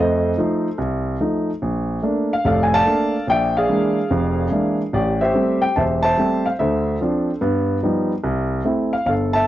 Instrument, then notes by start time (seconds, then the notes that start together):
grand piano
Already playing: F2 A3
0.00 A4 C5 D#5
0.38 F3 A3 D#4
0.78 C2
1.20 F3 A3 D#4
1.62 A#1
2.03 A3 A#3 D4
2.33 F5
2.45 F1 A2 A4 D5 F5
2.63 G#5
2.74 D5 F5 A5
2.86 A3 A#3 D4
3.27 A#1 D5 E5 G5
3.57 G#4 D5 F5
3.69 E3 G#3 A#3 D4
4.10 F1 F2
4.51 E3 G#3 A#3 D4
4.93 A1 G4 D5
5.21 G4 C5 E5
5.34 G3 A3 C4
5.62 G5
5.76 E1 C5 E5 A5
6.03 C5 E5 A5
6.17 G3 A3 C4
6.46 F5
6.59 D2 D3 A4 C5 E5
7.01 F3 C4 D4
7.41 G2 B3
7.83 F3 G3 B3 D#4
8.24 C2
8.65 A3 C4 E4
8.93 F5
9.06 G1 A4 F5
9.33 E5 A5